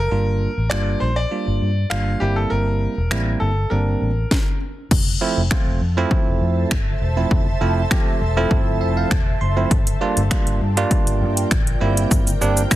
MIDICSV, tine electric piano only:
0, 0, Header, 1, 2, 480
1, 0, Start_track
1, 0, Key_signature, -1, "major"
1, 0, Tempo, 600000
1, 90, Time_signature, 4, 2, 24, 8
1, 10206, End_track
2, 0, Start_track
2, 0, Title_t, "Tine electric piano"
2, 0, Program_c, 0, 4
2, 89, Note_on_c, 0, 55, 68
2, 90, Note_on_c, 0, 58, 64
2, 92, Note_on_c, 0, 62, 63
2, 93, Note_on_c, 0, 65, 74
2, 399, Note_off_c, 0, 55, 0
2, 400, Note_off_c, 0, 58, 0
2, 400, Note_off_c, 0, 62, 0
2, 401, Note_off_c, 0, 65, 0
2, 567, Note_on_c, 0, 55, 79
2, 568, Note_on_c, 0, 58, 69
2, 570, Note_on_c, 0, 62, 70
2, 571, Note_on_c, 0, 65, 85
2, 878, Note_off_c, 0, 55, 0
2, 879, Note_off_c, 0, 58, 0
2, 879, Note_off_c, 0, 62, 0
2, 880, Note_off_c, 0, 65, 0
2, 1048, Note_on_c, 0, 55, 72
2, 1049, Note_on_c, 0, 58, 62
2, 1052, Note_on_c, 0, 62, 61
2, 1052, Note_on_c, 0, 65, 75
2, 1359, Note_off_c, 0, 55, 0
2, 1359, Note_off_c, 0, 58, 0
2, 1360, Note_off_c, 0, 62, 0
2, 1361, Note_off_c, 0, 65, 0
2, 1528, Note_on_c, 0, 55, 71
2, 1529, Note_on_c, 0, 58, 67
2, 1530, Note_on_c, 0, 62, 66
2, 1532, Note_on_c, 0, 65, 74
2, 1758, Note_off_c, 0, 55, 0
2, 1759, Note_off_c, 0, 58, 0
2, 1768, Note_on_c, 0, 55, 76
2, 1769, Note_on_c, 0, 58, 71
2, 1770, Note_off_c, 0, 62, 0
2, 1770, Note_on_c, 0, 60, 69
2, 1771, Note_off_c, 0, 65, 0
2, 1771, Note_on_c, 0, 64, 83
2, 2350, Note_off_c, 0, 55, 0
2, 2351, Note_off_c, 0, 58, 0
2, 2352, Note_off_c, 0, 60, 0
2, 2352, Note_off_c, 0, 64, 0
2, 2487, Note_on_c, 0, 55, 79
2, 2488, Note_on_c, 0, 58, 75
2, 2489, Note_on_c, 0, 60, 71
2, 2491, Note_on_c, 0, 64, 89
2, 2798, Note_off_c, 0, 55, 0
2, 2798, Note_off_c, 0, 58, 0
2, 2799, Note_off_c, 0, 60, 0
2, 2800, Note_off_c, 0, 64, 0
2, 2968, Note_on_c, 0, 55, 76
2, 2969, Note_on_c, 0, 58, 70
2, 2970, Note_on_c, 0, 60, 73
2, 2971, Note_on_c, 0, 62, 85
2, 3278, Note_off_c, 0, 55, 0
2, 3279, Note_off_c, 0, 58, 0
2, 3279, Note_off_c, 0, 60, 0
2, 3280, Note_off_c, 0, 62, 0
2, 4168, Note_on_c, 0, 53, 97
2, 4169, Note_on_c, 0, 57, 90
2, 4171, Note_on_c, 0, 60, 89
2, 4172, Note_on_c, 0, 64, 107
2, 4327, Note_off_c, 0, 53, 0
2, 4328, Note_off_c, 0, 57, 0
2, 4328, Note_off_c, 0, 60, 0
2, 4329, Note_off_c, 0, 64, 0
2, 4408, Note_on_c, 0, 53, 86
2, 4410, Note_on_c, 0, 57, 80
2, 4411, Note_on_c, 0, 60, 78
2, 4412, Note_on_c, 0, 65, 95
2, 4639, Note_off_c, 0, 53, 0
2, 4640, Note_off_c, 0, 57, 0
2, 4640, Note_off_c, 0, 60, 0
2, 4641, Note_off_c, 0, 65, 0
2, 4776, Note_on_c, 0, 53, 105
2, 4777, Note_on_c, 0, 57, 96
2, 4780, Note_on_c, 0, 60, 95
2, 4780, Note_on_c, 0, 64, 114
2, 5381, Note_off_c, 0, 53, 0
2, 5382, Note_off_c, 0, 57, 0
2, 5383, Note_off_c, 0, 60, 0
2, 5383, Note_off_c, 0, 64, 0
2, 5735, Note_on_c, 0, 53, 84
2, 5735, Note_on_c, 0, 57, 77
2, 5737, Note_on_c, 0, 60, 74
2, 5738, Note_on_c, 0, 64, 92
2, 5964, Note_off_c, 0, 53, 0
2, 5965, Note_off_c, 0, 57, 0
2, 5966, Note_off_c, 0, 60, 0
2, 5966, Note_off_c, 0, 64, 0
2, 6088, Note_on_c, 0, 53, 97
2, 6088, Note_on_c, 0, 57, 91
2, 6090, Note_on_c, 0, 60, 87
2, 6091, Note_on_c, 0, 64, 106
2, 6247, Note_off_c, 0, 53, 0
2, 6247, Note_off_c, 0, 57, 0
2, 6248, Note_off_c, 0, 60, 0
2, 6248, Note_off_c, 0, 64, 0
2, 6328, Note_on_c, 0, 53, 91
2, 6329, Note_on_c, 0, 57, 84
2, 6330, Note_on_c, 0, 60, 80
2, 6331, Note_on_c, 0, 67, 97
2, 6559, Note_off_c, 0, 53, 0
2, 6559, Note_off_c, 0, 57, 0
2, 6560, Note_off_c, 0, 60, 0
2, 6560, Note_off_c, 0, 67, 0
2, 6695, Note_on_c, 0, 53, 105
2, 6696, Note_on_c, 0, 57, 92
2, 6697, Note_on_c, 0, 60, 95
2, 6699, Note_on_c, 0, 64, 114
2, 7048, Note_on_c, 0, 76, 65
2, 7167, Note_off_c, 0, 76, 0
2, 7177, Note_on_c, 0, 77, 70
2, 7282, Note_off_c, 0, 77, 0
2, 7288, Note_on_c, 0, 81, 73
2, 7301, Note_off_c, 0, 53, 0
2, 7301, Note_off_c, 0, 57, 0
2, 7302, Note_off_c, 0, 60, 0
2, 7302, Note_off_c, 0, 64, 0
2, 7512, Note_off_c, 0, 81, 0
2, 7528, Note_on_c, 0, 84, 71
2, 7653, Note_on_c, 0, 53, 85
2, 7655, Note_on_c, 0, 57, 79
2, 7656, Note_on_c, 0, 60, 79
2, 7658, Note_on_c, 0, 64, 94
2, 7752, Note_off_c, 0, 84, 0
2, 7768, Note_off_c, 0, 53, 0
2, 7769, Note_off_c, 0, 57, 0
2, 7769, Note_off_c, 0, 60, 0
2, 7770, Note_off_c, 0, 64, 0
2, 8007, Note_on_c, 0, 55, 95
2, 8010, Note_on_c, 0, 58, 93
2, 8010, Note_on_c, 0, 62, 89
2, 8012, Note_on_c, 0, 65, 111
2, 8167, Note_off_c, 0, 55, 0
2, 8168, Note_off_c, 0, 58, 0
2, 8168, Note_off_c, 0, 62, 0
2, 8169, Note_off_c, 0, 65, 0
2, 8247, Note_on_c, 0, 55, 91
2, 8248, Note_on_c, 0, 58, 82
2, 8249, Note_on_c, 0, 62, 84
2, 8251, Note_on_c, 0, 65, 100
2, 8478, Note_off_c, 0, 55, 0
2, 8479, Note_off_c, 0, 58, 0
2, 8479, Note_off_c, 0, 62, 0
2, 8480, Note_off_c, 0, 65, 0
2, 8614, Note_on_c, 0, 55, 106
2, 8615, Note_on_c, 0, 58, 100
2, 8616, Note_on_c, 0, 62, 100
2, 8618, Note_on_c, 0, 65, 122
2, 9220, Note_off_c, 0, 55, 0
2, 9220, Note_off_c, 0, 58, 0
2, 9221, Note_off_c, 0, 62, 0
2, 9222, Note_off_c, 0, 65, 0
2, 9446, Note_on_c, 0, 55, 94
2, 9448, Note_on_c, 0, 58, 91
2, 9449, Note_on_c, 0, 60, 88
2, 9450, Note_on_c, 0, 64, 107
2, 9838, Note_off_c, 0, 55, 0
2, 9838, Note_off_c, 0, 58, 0
2, 9839, Note_off_c, 0, 60, 0
2, 9839, Note_off_c, 0, 64, 0
2, 9928, Note_on_c, 0, 55, 102
2, 9930, Note_on_c, 0, 58, 89
2, 9931, Note_on_c, 0, 60, 88
2, 9932, Note_on_c, 0, 62, 112
2, 10087, Note_off_c, 0, 55, 0
2, 10088, Note_off_c, 0, 58, 0
2, 10088, Note_off_c, 0, 60, 0
2, 10089, Note_off_c, 0, 62, 0
2, 10168, Note_on_c, 0, 55, 89
2, 10169, Note_on_c, 0, 58, 84
2, 10169, Note_on_c, 0, 60, 80
2, 10171, Note_on_c, 0, 64, 104
2, 10206, Note_off_c, 0, 55, 0
2, 10206, Note_off_c, 0, 58, 0
2, 10206, Note_off_c, 0, 60, 0
2, 10206, Note_off_c, 0, 64, 0
2, 10206, End_track
0, 0, End_of_file